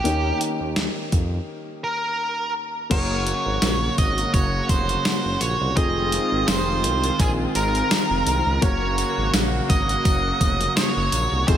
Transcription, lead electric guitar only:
0.00 0.37 G4 medium
1.84 2.51 A#4 medium
2.91 3.94 C#5 loud
3.98 4.33 D#5 medium
4.34 4.69 C#5 loud
4.70 5.41 C5 medium
5.41 5.74 C#5 medium
5.77 6.48 D#5 loud
6.48 7.22 C5 medium
7.20 7.30 G#4 medium
7.56 8.62 A#4 medium
8.63 9.30 C#5 medium
9.70 10.73 D#5 loud
10.77 11.48 C#5 medium
11.48 11.57 C5 medium

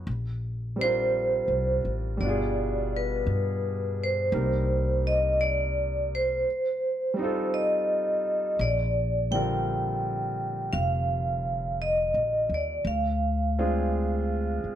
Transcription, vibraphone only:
0.81 1.82 C5 medium
2.21 2.94 D5 medium
2.97 4.04 B4 medium
4.04 5.09 C5 medium
5.07 5.41 D#5 medium
5.41 6.08 D5 medium
6.15 7.51 C5 medium
7.54 8.64 D#5 medium
8.61 9.35 D5 medium
9.32 10.77 G5 medium
10.73 11.75 F5 medium
11.82 12.49 D#5 medium
12.54 12.88 D5 medium
12.87 14.61 F5 medium

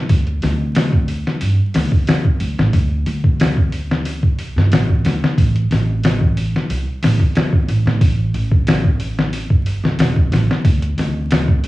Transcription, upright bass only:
0.10 0.39 D2 medium
0.43 1.23 D2 medium
1.42 1.57 G2 medium
1.75 1.90 D2 loud
2.41 2.56 D2 medium
2.58 2.72 A1 medium
2.73 3.03 D2 medium
3.07 4.23 D2 medium
4.23 4.52 C2 medium
4.56 4.70 G2 medium
4.72 5.01 A1 medium
5.05 5.20 D2 medium
5.38 5.67 A1 medium
5.71 6.51 A1 medium
6.69 6.85 C2 medium
7.03 7.18 A1 medium
7.68 7.84 A1 medium
7.86 7.99 A2 medium
8.01 8.30 A1 medium
8.34 9.50 A1 medium
9.50 9.79 G1 medium
9.84 9.97 C2 medium
9.99 10.28 E1 medium
10.32 10.47 A1 medium
10.65 10.94 D2 medium
10.98 11.68 D2 medium

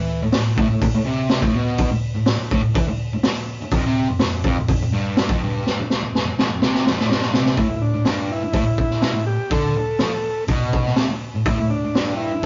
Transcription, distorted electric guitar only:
0.00 0.21 E3 loud
0.22 0.32 A2 medium
0.33 0.53 A2 medium
0.57 0.68 A2 loud
0.70 0.81 A2 medium
0.82 0.94 A2 medium
0.95 1.06 A2 medium
1.06 1.42 C3 loud
1.43 1.54 A2 loud
1.56 1.91 B2 medium
1.92 muted distorted electric guitar stroke medium
2.15 2.34 A2 medium
2.38 muted distorted electric guitar stroke medium
2.52 2.62 A2 loud
2.63 2.75 A2 medium
2.75 2.86 E3 loud
2.88 muted distorted electric guitar stroke medium
3.13 muted distorted electric guitar stroke medium
3.62 muted distorted electric guitar stroke medium
3.74 3.84 F2 loud
3.86 4.08 C3 loud
4.09 4.20 F2 medium
4.21 4.40 F2 medium
4.46 4.56 F2 loud
4.60 4.70 F2 medium
4.71 4.81 F2 medium
4.82 4.92 F2 medium
4.92 5.28 G2 loud
5.30 5.40 F2 loud
5.43 5.77 G2 medium
5.80 muted distorted electric guitar stroke medium
6.03 6.21 F2 medium
6.25 muted distorted electric guitar stroke medium
6.38 6.49 F2 loud
6.50 6.62 F2 medium
6.62 6.85 C3 loud
6.85 6.96 F2 loud
6.97 7.08 A2 medium
7.09 7.33 G2 loud
7.32 7.56 C3 medium
7.58 7.68 A2 medium
7.69 7.89 A2 medium
7.94 8.06 A2 medium
8.06 8.41 G2 loud
8.43 muted distorted electric guitar stroke medium
8.53 8.65 A2 loud
8.66 muted distorted electric guitar stroke medium
9.03 9.14 B2 loud
9.15 9.34 A2 medium
9.52 9.75 D3 medium
9.77 muted distorted electric guitar stroke medium
10.00 10.11 F3 loud
10.48 10.96 B2 medium
10.98 11.09 C3 loud
11.10 muted distorted electric guitar stroke medium
11.35 11.46 A2 medium
11.48 11.58 A2 loud
11.60 11.78 A2 medium
11.84 11.95 A2 medium
11.96 12.31 G2 loud
12.32 muted distorted electric guitar stroke medium
12.42 12.46 A2 medium

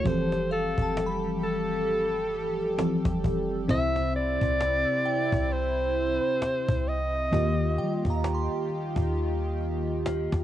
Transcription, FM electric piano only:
0.04 2.74 E3 medium
0.04 2.74 F3 medium
0.04 2.74 C4 medium
0.04 2.75 G4 medium
0.04 2.75 A4 medium
2.78 3.69 E3 medium
2.78 3.69 F3 medium
2.78 3.67 C4 medium
2.78 3.70 G4 medium
2.78 3.70 A4 medium
3.68 7.28 C3 medium
3.68 7.28 C4 medium
3.68 7.29 E4 medium
3.68 7.29 C5 medium
7.31 10.44 D#3 medium
7.31 10.44 A#3 medium
7.31 10.44 F4 medium
7.31 10.44 G4 medium
7.31 10.44 D#5 medium

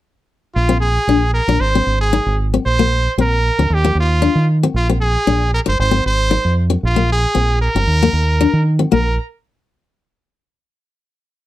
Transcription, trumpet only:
0.55 0.80 F4 medium
0.80 1.30 G#4 medium
1.34 1.62 A#4 medium
1.61 2.00 C5 loud
2.01 2.36 G#4 medium
2.66 3.14 C5 loud
3.21 3.76 A#4 loud
3.74 3.98 G4 medium
4.00 4.47 F4 medium
4.76 4.88 F4 medium
5.01 5.49 G#4 medium
5.54 5.60 A#4 medium
5.68 5.79 C5 medium
5.80 6.04 C5 medium
6.06 6.54 C5 medium
6.86 7.09 F4 medium
7.12 7.59 G#4 medium
7.62 8.62 A#4 loud
8.92 9.17 A#4 medium

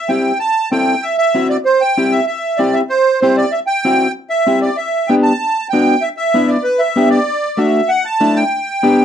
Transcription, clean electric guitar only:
0.09 0.31 C4 medium
0.09 0.32 E4 medium
0.09 0.32 G4 medium
0.72 0.94 C4 medium
0.72 0.94 E4 medium
0.72 0.94 A4 medium
1.35 1.57 C4 medium
1.35 1.57 E4 medium
1.35 1.57 F#4 medium
1.97 2.19 C4 medium
1.97 2.19 E4 medium
1.97 2.20 G4 medium
2.59 2.81 C4 medium
2.59 2.81 E4 medium
2.59 2.82 G4 medium
3.22 3.44 C4 medium
3.22 3.44 E4 medium
3.22 3.45 G4 medium
3.85 4.07 C4 medium
3.85 4.07 E4 medium
3.85 4.07 F#4 medium
4.47 4.69 C4 medium
4.47 4.69 E4 medium
4.47 4.69 G4 medium
5.09 5.31 B3 medium
5.09 5.32 D4 medium
5.09 5.32 G4 medium
5.73 5.94 B3 medium
5.73 5.95 D4 medium
5.73 5.95 F#4 medium
6.34 6.56 B3 medium
6.34 6.56 D4 medium
6.34 6.57 E4 medium
6.96 7.18 B3 medium
6.96 7.18 D4 medium
6.96 7.19 G4 medium
7.57 7.80 A3 medium
7.57 7.80 D4 medium
7.57 7.81 F#4 medium
8.21 8.43 A3 medium
8.21 8.43 D4 medium
8.21 8.43 E4 medium
8.83 9.05 B3 medium
8.83 9.05 D4 medium
8.83 9.05 G4 loud

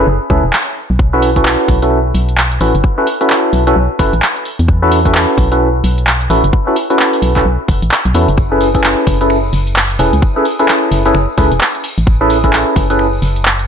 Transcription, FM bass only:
0.07 0.19 F#1 loud
0.30 0.42 C#2 medium
0.44 0.52 E1 medium
0.90 1.57 B1 medium
1.68 2.13 B1 loud
2.15 2.59 B1 medium
2.61 2.73 A1 medium
2.75 2.83 F#1 medium
3.53 3.74 B1 loud
3.76 3.89 B1 loud
3.99 4.12 F#1 medium
4.13 4.21 A1 medium
4.59 5.26 E2 medium
5.38 5.82 B1 loud
5.84 6.28 B1 medium
6.30 6.42 A1 medium
6.44 6.52 F#1 medium
7.22 7.43 B1 medium
7.45 7.58 B1 loud
7.68 7.81 F#1 medium
7.82 7.91 A1 medium
8.05 8.14 B1 medium
8.15 8.27 E2 medium
8.29 8.95 F#1 medium
9.07 9.51 F#1 loud
9.53 9.98 F#1 medium
9.99 10.12 E1 medium
10.13 10.21 C#2 medium
10.92 11.13 F#1 loud
11.15 11.27 F#1 loud
11.38 11.50 C#2 medium
11.52 11.60 E1 medium
11.98 12.65 A1 loud
12.76 13.21 F#1 loud
13.22 13.67 F#1 medium

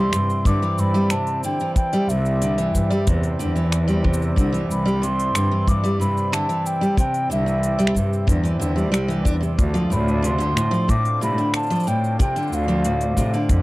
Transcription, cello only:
0.13 0.25 G2 medium
0.45 0.57 G2 medium
0.78 0.90 G2 medium
2.09 2.66 C2 medium
2.75 2.86 G2 medium
3.07 3.30 E2 medium
3.41 4.30 E2 medium
4.37 4.60 C2 loud
4.69 5.27 C2 medium
5.34 5.46 G2 medium
5.67 5.79 G2 medium
5.99 6.11 G2 medium
7.30 7.88 C2 medium
7.96 8.07 G2 medium
8.28 8.51 E2 medium
8.60 8.94 E2 medium
8.93 9.27 C2 medium
9.26 9.37 E2 medium
9.59 9.82 D2 medium
9.91 10.49 D2 medium
10.56 10.68 A2 medium
10.89 11.01 A2 medium
11.21 11.33 A2 medium
12.51 13.10 D2 medium
13.17 13.29 A2 medium
13.50 13.62 F2 medium

